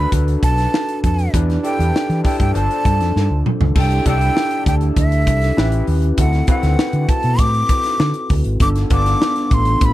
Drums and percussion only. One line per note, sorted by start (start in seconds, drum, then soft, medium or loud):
0.12 kick medium
0.12 closed hi-hat medium
0.28 closed hi-hat soft
0.43 kick medium
0.43 closed hi-hat medium
0.58 snare soft
0.58 closed hi-hat soft
0.74 snare medium
0.89 closed hi-hat medium
1.04 kick medium
1.04 closed hi-hat medium
1.19 closed hi-hat soft
1.34 kick medium
1.34 closed hi-hat medium
1.50 snare soft
1.50 closed hi-hat soft
1.64 closed hi-hat medium
1.80 closed hi-hat medium
1.96 snare loud
2.10 snare soft
2.10 closed hi-hat soft
2.25 kick medium
2.25 open hi-hat medium
2.40 kick medium
2.40 closed hi-hat soft
2.55 closed hi-hat medium
2.71 closed hi-hat soft
2.85 kick medium
2.85 closed hi-hat medium
3.00 snare soft
3.00 closed hi-hat soft
3.16 snare soft
3.46 mid tom medium
3.61 floor tom medium
3.75 kick medium
3.75 crash medium
3.91 closed hi-hat soft
4.05 kick medium
4.05 closed hi-hat medium
4.21 closed hi-hat medium
4.37 snare loud
4.51 closed hi-hat soft
4.66 kick loud
4.66 closed hi-hat medium
4.81 closed hi-hat soft
4.96 kick medium
4.96 closed hi-hat medium
5.12 closed hi-hat soft
5.27 kick medium
5.27 closed hi-hat medium
5.42 snare soft
5.42 closed hi-hat soft
5.58 snare loud
5.72 closed hi-hat medium
5.87 open hi-hat medium
6.02 closed hi-hat medium
6.18 kick medium
6.18 closed hi-hat medium
6.33 snare soft
6.33 closed hi-hat soft
6.47 kick medium
6.47 closed hi-hat medium
6.63 snare soft
6.63 closed hi-hat medium
6.79 snare loud
6.93 closed hi-hat soft
7.09 kick medium
7.09 closed hi-hat medium
7.23 closed hi-hat soft
7.38 kick medium
7.38 closed hi-hat medium
7.54 closed hi-hat soft
7.69 kick medium
7.69 closed hi-hat medium
7.84 snare soft
7.84 closed hi-hat soft
8.00 snare loud
8.14 closed hi-hat medium
8.29 kick medium
8.29 open hi-hat medium
8.44 closed hi-hat soft
8.60 kick loud
8.60 closed hi-hat medium
8.76 snare soft
8.76 closed hi-hat soft
8.90 kick medium
8.90 closed hi-hat medium
9.06 snare soft
9.06 closed hi-hat medium
9.22 snare loud
9.36 snare soft
9.36 closed hi-hat soft
9.51 kick medium
9.51 closed hi-hat medium
9.65 closed hi-hat medium
9.81 kick medium
9.81 closed hi-hat medium